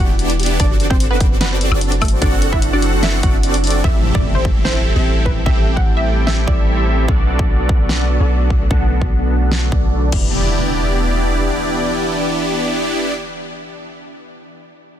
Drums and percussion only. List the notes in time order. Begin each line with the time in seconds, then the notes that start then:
0.19 closed hi-hat
0.30 closed hi-hat
0.40 closed hi-hat
0.43 closed hi-hat
0.46 closed hi-hat
0.60 kick, closed hi-hat, ride
0.80 closed hi-hat
0.91 kick
1.00 closed hi-hat
1.20 kick, closed hi-hat
1.41 snare, closed hi-hat, ride
1.61 closed hi-hat
1.72 high woodblock
1.81 closed hi-hat
1.92 closed hi-hat
2.02 kick, closed hi-hat, high woodblock
2.05 closed hi-hat
2.08 closed hi-hat
2.22 kick, closed hi-hat, ride
2.42 closed hi-hat
2.53 kick
2.62 closed hi-hat
2.82 closed hi-hat
3.03 snare, closed hi-hat, ride
3.23 kick, closed hi-hat
3.43 closed hi-hat
3.54 closed hi-hat
3.64 closed hi-hat, open hi-hat
3.70 closed hi-hat
3.84 kick
4.15 kick
4.45 kick
4.65 snare
5.26 kick
5.46 kick
5.77 kick
6.27 snare
6.48 kick
7.08 kick
7.39 kick
7.69 kick
7.89 snare
8.50 kick
8.71 kick
9.02 kick
9.52 snare
9.72 kick
10.12 kick, crash